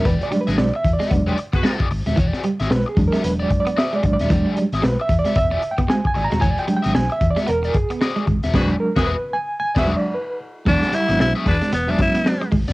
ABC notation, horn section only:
X:1
M:4/4
L:1/16
Q:"Swing 16ths" 1/4=113
K:Emix
V:1 name="Horn section"
z8 z [FGB] z [FGB]3 z2 | z16 | z16 | z16 |
[FGB]2 z [FGB]2 z4 [FGB]2 z4 z | z6 [FGB] z8 z |]